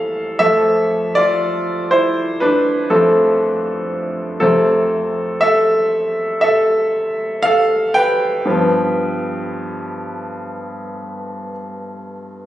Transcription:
Already playing: A4 E5 F5
0.39 F2 F3 A3 A4 E5
1.15 F4 D5
1.91 E4 C5
2.40 D4 B4
2.90 F2 F3 A3 C4 A4
4.40 F2 C3 A3 C4 A4
5.41 A4 E5
6.41 A4 E5
7.43 A4 F5
7.94 B4 G5
8.45 G2 F3 B3

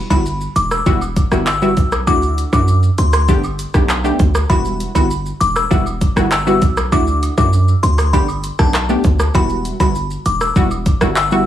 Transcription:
0.10 G1 G3 B3 E4 F#4 B5, kick, shaker
0.26 shaker
0.41 shaker
0.56 E1 D6, closed hi-hat, cabasa, shaker
0.71 E6, cross-stick, shaker
0.86 E1 G3 B3 E4 F#4, kick, shaker
1.01 high woodblock, shaker
1.16 kick, closed hi-hat, cabasa, shaker
1.32 G1 G3 B3 E4 F#4, cross-stick, shaker
1.47 E6, clap, high woodblock, shaker
1.62 G3 B3 E4 F#4, shaker
1.77 B1, kick, closed hi-hat, cabasa, shaker
1.92 cross-stick, high woodblock, shaker
2.07 D2 A3 D4 E4 F#4 D6, kick, shaker
2.22 shaker
2.38 closed hi-hat, cabasa, shaker
2.53 F#2 A3 D4 E4 F#4 D6, kick, shaker
2.68 shaker
2.83 shaker
2.98 D2 C6, closed hi-hat, cabasa, shaker
3.13 C6, cross-stick, shaker
3.28 G1 A3 B3 D4 G4, kick, shaker
3.44 high woodblock, shaker
3.59 closed hi-hat, cabasa, shaker
3.74 B1 A3 B3 D4 G4, kick, cross-stick, shaker
3.89 clap, high woodblock, shaker
4.04 A3 B3 D4 G4, shaker
4.19 D2, kick, closed hi-hat, cabasa, shaker
4.35 cross-stick, high woodblock, shaker
4.50 E1 G3 B3 E4 F#4 B5, kick, shaker
4.65 shaker
4.80 closed hi-hat, cabasa, shaker
4.95 G1 G3 B3 E4 F#4 B5, kick, shaker
5.10 shaker
5.26 shaker
5.41 E1 D6, closed hi-hat, cabasa, shaker
5.56 E6, cross-stick, shaker
5.71 E1 G3 B3 E4 F#4, kick, shaker
5.86 high woodblock, shaker
6.01 kick, closed hi-hat, cabasa, shaker
6.16 G1 G3 B3 E4 F#4, cross-stick, shaker
6.31 E6, clap, high woodblock, shaker
6.47 G3 B3 E4 F#4, shaker
6.62 B1, kick, closed hi-hat, cabasa, shaker
6.77 cross-stick, high woodblock, shaker
6.92 D2 A3 D4 E4 F#4 D6, kick, shaker
7.07 shaker
7.23 closed hi-hat, cabasa, high woodblock, shaker
7.38 F#2 A3 D4 E4 F#4 D6, kick, shaker
7.53 shaker
7.68 shaker
7.83 D2 C6, closed hi-hat, cabasa, shaker
7.98 C6, cross-stick, high woodblock, shaker
8.13 G1 A3 B3 D4 G4 B5, kick, shaker
8.28 high woodblock, shaker
8.43 closed hi-hat, cabasa, shaker
8.59 B1 A3 B3 D4 G4 A5, kick, cross-stick, shaker
8.74 cross-stick, clap, high woodblock, shaker
8.89 A3 B3 D4 G4, shaker
9.04 D2, kick, closed hi-hat, cabasa, shaker
9.19 cross-stick, high woodblock, shaker
9.34 E1 G3 B3 E4 F#4 B5, kick, shaker
9.50 shaker
9.65 closed hi-hat, cabasa, shaker
9.80 G1 G3 B3 E4 F#4 B5, kick, shaker
9.95 shaker
10.11 shaker
10.26 E1 D6, closed hi-hat, cabasa, shaker
10.41 E6, cross-stick, shaker
10.56 E1 G3 B3 E4 F#4, kick, shaker
10.71 high woodblock, shaker
10.86 kick, closed hi-hat, cabasa, shaker
11.01 G1 G3 B3 E4 F#4, cross-stick, shaker
11.16 E6, clap, high woodblock, shaker
11.31 G3 B3 E4 F#4, shaker

